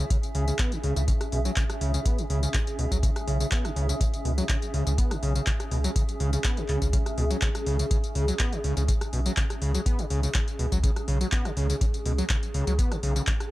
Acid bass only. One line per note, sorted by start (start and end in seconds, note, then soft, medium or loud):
0.11 0.18 C#3 medium
0.35 0.45 C#3 loud
0.48 0.54 C#3 medium
0.59 0.74 B3 medium
0.72 0.78 C#3 medium
0.84 0.94 C#3 loud
0.96 1.03 C#3 medium
1.08 1.12 C#3 loud
1.32 1.39 B2 medium
1.45 1.52 F#3 loud
1.57 1.64 C#3 medium
1.81 1.92 C#3 loud
1.94 2.00 C#3 medium
2.06 2.20 B3 medium
2.18 2.25 C#3 medium
2.30 2.41 C#3 loud
2.43 2.49 C#3 medium
2.54 2.59 C#3 loud
2.79 2.86 B2 medium
2.92 2.98 F#3 loud
3.03 3.10 C#3 medium
3.27 3.38 C#3 loud
3.40 3.47 C#3 medium
3.52 3.66 B3 medium
3.65 3.71 C#3 medium
3.76 3.87 C#3 loud
3.89 3.95 C#3 medium
4.01 4.05 C#3 loud
4.25 4.32 B2 medium
4.38 4.44 F#3 loud
4.49 4.56 C#3 medium
4.74 4.84 C#3 loud
4.87 4.93 C#3 medium
4.98 5.13 B3 medium
5.11 5.17 C#3 medium
5.23 5.33 C#3 loud
5.36 5.42 C#3 medium
5.47 5.51 C#3 loud
5.71 5.78 B2 medium
5.84 5.91 F#3 loud
5.96 6.03 C#3 medium
6.20 6.31 C#3 loud
6.33 6.39 C#3 medium
6.45 6.59 B3 medium
6.57 6.64 C#3 medium
6.69 6.80 C#3 loud
6.82 6.88 C#3 medium
6.93 6.98 C#3 loud
7.18 7.25 B2 medium
7.30 7.37 F#3 loud
7.42 7.49 C#3 medium
7.67 7.77 C#3 loud
7.79 7.86 C#3 medium
7.91 7.98 C#3 medium
8.15 8.26 C#3 loud
8.28 8.34 F#3 medium
8.40 8.54 B3 medium
8.53 8.59 C#3 medium
8.64 8.75 C#3 loud
8.77 8.83 C#3 medium
8.89 8.93 C#3 loud
9.13 9.20 B2 medium
9.26 9.32 F#3 loud
9.37 9.44 C#3 medium
9.62 9.72 C#3 loud
9.75 9.81 F#3 medium
9.86 10.01 B3 medium
9.99 10.05 C#3 medium
10.10 10.21 C#3 loud
10.23 10.30 C#3 medium
10.35 10.39 C#3 loud
10.59 10.66 B2 medium
10.72 10.78 F#3 loud
10.84 10.91 C#3 medium
11.08 11.19 C#3 loud
11.21 11.27 F#3 medium
11.32 11.47 B3 medium
11.45 11.52 C#3 medium
11.57 11.67 C#3 loud
11.70 11.76 C#3 medium
11.81 11.85 C#3 loud
12.06 12.13 B2 medium
12.18 12.25 F#3 loud
12.30 12.37 C#3 medium
12.54 12.65 C#3 loud
12.67 12.74 F#3 medium
12.79 12.93 B3 medium
12.92 12.98 C#3 medium
13.03 13.14 C#3 loud
13.16 13.22 C#3 medium
13.28 13.32 C#3 loud